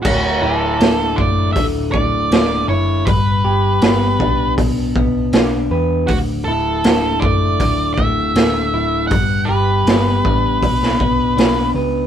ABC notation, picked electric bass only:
X:1
M:4/4
L:1/8
Q:1/4=80
K:D
V:1 name="Picked electric bass" clef=bass
D,,, D,,, D,,, F,,, D,,, D,,, D,,, F,,, | G,,, G,,, G,,, B,,, B,,, B,,, B,,, E,, | D,,, D,,, D,,, F,,, D,,, D,,, D,,, D,,, | G,,, G,,, G,,, A,,, B,,, B,,, B,,, C,, |]